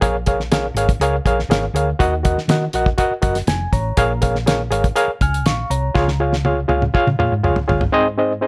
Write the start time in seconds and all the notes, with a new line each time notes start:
0.01 A#1 A#2 G#4 A#4 C#5 F5, kick, closed hi-hat
0.26 G#4 A#4 C#5 F5, kick, closed hi-hat
0.40 snare
0.52 G#4 A#4 C#5 F5, snare, closed hi-hat
0.74 G#1 G#4 A#4 C#5 F5, closed hi-hat
0.89 kick, closed hi-hat
1.00 C#2 G#4 A#4 C#5 F5, closed hi-hat
1.25 A#1 G#4 A#4 C#5 F5, kick, closed hi-hat
1.39 snare
1.49 G#1 G#4 A#4 C#5 F5, snare, closed hi-hat
1.74 D2 G#4 A#4 C#5 F5, closed hi-hat
1.99 D#2 D#3 F#4 A#4 D#5 F#5, kick, closed hi-hat
2.23 F#4 A#4 D#5 F#5, kick, closed hi-hat
2.38 snare
2.48 D#3 F#4 A#4 D#5 F#5, snare, closed hi-hat
2.73 A#1 F#4 A#4 D#5 F#5, closed hi-hat
2.86 kick
2.98 F#4 A#4 D#5 F#5, kick, closed hi-hat
3.11 muted fingered electric bass stroke
3.22 F#1 F#4 A#4 D#5 F#5, kick, closed hi-hat
3.35 snare, closed hi-hat
3.47 F1 G#5, snare, closed hi-hat
3.72 A1 C#5 A#5, kick, closed hi-hat
3.97 A#1 A#2 G#4 A#4 C#5 F5, kick, closed hi-hat
4.22 G#4 A#4 C#5 F5, kick, closed hi-hat
4.35 snare
4.46 G#4 A#4 C#5 F5, snare, closed hi-hat
4.71 G#1 G#4 A#4 C#5 F5, closed hi-hat
4.84 kick, closed hi-hat
4.96 G#4 A#4 C#5 F5, closed hi-hat
5.08 muted fingered electric bass stroke
5.21 C#2 G#5 F6, kick, closed hi-hat
5.34 closed hi-hat
5.45 A#1 F5 C#6, snare, closed hi-hat
5.70 C2 C#5 A#5, closed hi-hat
5.95 C#2 C#3 F4 G#4 C#5 F5, kick, snare
6.08 snare
6.20 F4 G#4 C#5 F5
6.33 snare
6.45 F4 G#4 C#5 F5, high tom
6.68 C#2 F4 G#4 C#5 F5, high tom
6.82 mid tom
6.94 F4 G#4 C#5 F5, kick
7.07 C#3, mid tom
7.19 A#2 F4 G#4 C#5 F5, mid tom
7.32 G#2
7.44 C#2 F4 G#4 C#5 F5, mid tom
7.56 floor tom
7.68 G1 F4 G#4 C#5 F5, floor tom
7.81 floor tom
7.92 G#2 C4 D#4 G#4 C5 D#5
8.18 C4 D#4 G#4 C5 D#5
8.41 C4 D#4 G#4 C5 D#5